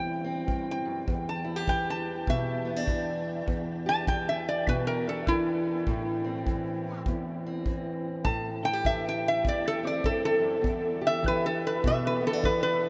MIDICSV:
0, 0, Header, 1, 4, 480
1, 0, Start_track
1, 0, Key_signature, 1, "minor"
1, 0, Tempo, 597610
1, 867, Time_signature, 4, 2, 24, 8
1, 10355, End_track
2, 0, Start_track
2, 0, Title_t, "Resonator guitar played with a steel bar"
2, 0, Program_c, 0, 25
2, 0, Note_on_c, 0, 79, 97
2, 531, Note_off_c, 0, 79, 0
2, 573, Note_on_c, 0, 79, 78
2, 1026, Note_off_c, 0, 79, 0
2, 1036, Note_on_c, 0, 81, 66
2, 1342, Note_off_c, 0, 81, 0
2, 1358, Note_on_c, 0, 79, 89
2, 1508, Note_off_c, 0, 79, 0
2, 1528, Note_on_c, 0, 81, 85
2, 1829, Note_off_c, 0, 81, 0
2, 1845, Note_on_c, 0, 76, 96
2, 2768, Note_off_c, 0, 76, 0
2, 3123, Note_on_c, 0, 81, 104
2, 3270, Note_off_c, 0, 81, 0
2, 3279, Note_on_c, 0, 79, 95
2, 3428, Note_off_c, 0, 79, 0
2, 3444, Note_on_c, 0, 76, 86
2, 3591, Note_off_c, 0, 76, 0
2, 3603, Note_on_c, 0, 74, 84
2, 3750, Note_off_c, 0, 74, 0
2, 3764, Note_on_c, 0, 71, 86
2, 3908, Note_off_c, 0, 71, 0
2, 3912, Note_on_c, 0, 70, 82
2, 4064, Note_off_c, 0, 70, 0
2, 4087, Note_on_c, 0, 69, 72
2, 4232, Note_off_c, 0, 69, 0
2, 4243, Note_on_c, 0, 64, 90
2, 5641, Note_off_c, 0, 64, 0
2, 6623, Note_on_c, 0, 81, 90
2, 6934, Note_off_c, 0, 81, 0
2, 6948, Note_on_c, 0, 79, 92
2, 7101, Note_off_c, 0, 79, 0
2, 7117, Note_on_c, 0, 76, 86
2, 7266, Note_off_c, 0, 76, 0
2, 7298, Note_on_c, 0, 79, 88
2, 7436, Note_off_c, 0, 79, 0
2, 7455, Note_on_c, 0, 76, 91
2, 7595, Note_off_c, 0, 76, 0
2, 7618, Note_on_c, 0, 74, 91
2, 7757, Note_off_c, 0, 74, 0
2, 7772, Note_on_c, 0, 69, 90
2, 7914, Note_off_c, 0, 69, 0
2, 7928, Note_on_c, 0, 74, 84
2, 8072, Note_off_c, 0, 74, 0
2, 8076, Note_on_c, 0, 69, 89
2, 8226, Note_off_c, 0, 69, 0
2, 8234, Note_on_c, 0, 69, 90
2, 8484, Note_off_c, 0, 69, 0
2, 8889, Note_on_c, 0, 76, 104
2, 9033, Note_off_c, 0, 76, 0
2, 9058, Note_on_c, 0, 71, 98
2, 9198, Note_off_c, 0, 71, 0
2, 9204, Note_on_c, 0, 69, 94
2, 9351, Note_off_c, 0, 69, 0
2, 9371, Note_on_c, 0, 71, 93
2, 9515, Note_off_c, 0, 71, 0
2, 9537, Note_on_c, 0, 76, 104
2, 9678, Note_off_c, 0, 76, 0
2, 9694, Note_on_c, 0, 71, 90
2, 9836, Note_off_c, 0, 71, 0
2, 9854, Note_on_c, 0, 69, 87
2, 9997, Note_off_c, 0, 69, 0
2, 10001, Note_on_c, 0, 71, 88
2, 10133, Note_off_c, 0, 71, 0
2, 10142, Note_on_c, 0, 71, 91
2, 10355, Note_off_c, 0, 71, 0
2, 10355, End_track
3, 0, Start_track
3, 0, Title_t, "Steel-string acoustic guitar"
3, 0, Program_c, 1, 25
3, 0, Note_on_c, 1, 40, 62
3, 0, Note_on_c, 1, 52, 58
3, 0, Note_on_c, 1, 55, 61
3, 0, Note_on_c, 1, 60, 67
3, 0, Note_on_c, 1, 67, 59
3, 187, Note_off_c, 1, 60, 0
3, 196, Note_on_c, 1, 60, 67
3, 375, Note_off_c, 1, 40, 0
3, 378, Note_on_c, 1, 43, 59
3, 682, Note_off_c, 1, 43, 0
3, 685, Note_on_c, 1, 42, 61
3, 838, Note_off_c, 1, 60, 0
3, 860, Note_off_c, 1, 42, 0
3, 863, Note_on_c, 1, 40, 76
3, 1157, Note_off_c, 1, 67, 0
3, 1161, Note_on_c, 1, 64, 65
3, 1253, Note_off_c, 1, 64, 0
3, 1253, Note_on_c, 1, 67, 52
3, 1338, Note_off_c, 1, 52, 0
3, 1341, Note_on_c, 1, 52, 61
3, 1827, Note_on_c, 1, 47, 66
3, 2130, Note_on_c, 1, 59, 70
3, 2220, Note_off_c, 1, 59, 0
3, 2220, Note_on_c, 1, 62, 52
3, 2303, Note_off_c, 1, 52, 0
3, 2306, Note_on_c, 1, 52, 58
3, 2307, Note_off_c, 1, 47, 0
3, 2771, Note_off_c, 1, 40, 0
3, 2780, Note_on_c, 1, 40, 75
3, 2784, Note_off_c, 1, 67, 0
3, 2787, Note_off_c, 1, 62, 0
3, 2797, Note_off_c, 1, 55, 0
3, 3101, Note_on_c, 1, 67, 72
3, 3269, Note_off_c, 1, 52, 0
3, 3272, Note_on_c, 1, 52, 59
3, 3753, Note_on_c, 1, 47, 64
3, 4076, Note_on_c, 1, 62, 64
3, 4229, Note_off_c, 1, 47, 0
3, 4231, Note_off_c, 1, 52, 0
3, 4234, Note_on_c, 1, 52, 57
3, 4696, Note_off_c, 1, 62, 0
3, 4702, Note_off_c, 1, 40, 0
3, 4715, Note_on_c, 1, 45, 80
3, 4739, Note_off_c, 1, 67, 0
3, 5015, Note_on_c, 1, 60, 54
3, 5188, Note_off_c, 1, 52, 0
3, 5191, Note_on_c, 1, 52, 57
3, 5669, Note_off_c, 1, 45, 0
3, 5670, Note_on_c, 1, 40, 66
3, 5972, Note_off_c, 1, 60, 0
3, 5996, Note_on_c, 1, 60, 68
3, 6158, Note_off_c, 1, 52, 0
3, 6161, Note_on_c, 1, 52, 60
3, 6616, Note_off_c, 1, 60, 0
3, 6621, Note_on_c, 1, 45, 74
3, 6627, Note_off_c, 1, 40, 0
3, 6934, Note_on_c, 1, 64, 69
3, 7014, Note_off_c, 1, 64, 0
3, 7014, Note_on_c, 1, 67, 51
3, 7105, Note_off_c, 1, 52, 0
3, 7108, Note_on_c, 1, 52, 60
3, 7578, Note_on_c, 1, 40, 64
3, 7582, Note_off_c, 1, 45, 0
3, 7898, Note_on_c, 1, 60, 66
3, 8059, Note_off_c, 1, 40, 0
3, 8062, Note_on_c, 1, 43, 54
3, 8351, Note_off_c, 1, 43, 0
3, 8354, Note_on_c, 1, 42, 65
3, 8521, Note_off_c, 1, 42, 0
3, 8524, Note_on_c, 1, 40, 84
3, 8528, Note_off_c, 1, 60, 0
3, 8543, Note_off_c, 1, 67, 0
3, 8846, Note_on_c, 1, 67, 69
3, 9013, Note_off_c, 1, 52, 0
3, 9016, Note_on_c, 1, 52, 64
3, 9509, Note_on_c, 1, 47, 69
3, 9807, Note_on_c, 1, 59, 68
3, 9905, Note_off_c, 1, 59, 0
3, 9905, Note_on_c, 1, 62, 50
3, 9977, Note_off_c, 1, 52, 0
3, 9980, Note_on_c, 1, 52, 65
3, 9989, Note_off_c, 1, 47, 0
3, 10355, Note_off_c, 1, 40, 0
3, 10355, Note_off_c, 1, 52, 0
3, 10355, Note_off_c, 1, 62, 0
3, 10355, Note_off_c, 1, 67, 0
3, 10355, End_track
4, 0, Start_track
4, 0, Title_t, "Drums"
4, 386, Note_on_c, 9, 36, 64
4, 466, Note_off_c, 9, 36, 0
4, 865, Note_on_c, 9, 36, 68
4, 946, Note_off_c, 9, 36, 0
4, 1346, Note_on_c, 9, 36, 68
4, 1426, Note_off_c, 9, 36, 0
4, 1826, Note_on_c, 9, 36, 73
4, 1907, Note_off_c, 9, 36, 0
4, 2309, Note_on_c, 9, 36, 67
4, 2390, Note_off_c, 9, 36, 0
4, 2792, Note_on_c, 9, 36, 66
4, 2873, Note_off_c, 9, 36, 0
4, 3272, Note_on_c, 9, 36, 72
4, 3353, Note_off_c, 9, 36, 0
4, 3754, Note_on_c, 9, 36, 73
4, 3834, Note_off_c, 9, 36, 0
4, 4234, Note_on_c, 9, 36, 65
4, 4315, Note_off_c, 9, 36, 0
4, 4713, Note_on_c, 9, 36, 69
4, 4794, Note_off_c, 9, 36, 0
4, 5193, Note_on_c, 9, 36, 67
4, 5273, Note_off_c, 9, 36, 0
4, 5671, Note_on_c, 9, 36, 65
4, 5751, Note_off_c, 9, 36, 0
4, 6150, Note_on_c, 9, 36, 63
4, 6231, Note_off_c, 9, 36, 0
4, 6626, Note_on_c, 9, 36, 68
4, 6706, Note_off_c, 9, 36, 0
4, 7108, Note_on_c, 9, 36, 68
4, 7188, Note_off_c, 9, 36, 0
4, 7588, Note_on_c, 9, 36, 73
4, 7668, Note_off_c, 9, 36, 0
4, 8066, Note_on_c, 9, 36, 65
4, 8147, Note_off_c, 9, 36, 0
4, 8547, Note_on_c, 9, 36, 68
4, 8628, Note_off_c, 9, 36, 0
4, 9031, Note_on_c, 9, 36, 66
4, 9111, Note_off_c, 9, 36, 0
4, 9510, Note_on_c, 9, 36, 76
4, 9591, Note_off_c, 9, 36, 0
4, 9990, Note_on_c, 9, 36, 67
4, 10071, Note_off_c, 9, 36, 0
4, 10355, End_track
0, 0, End_of_file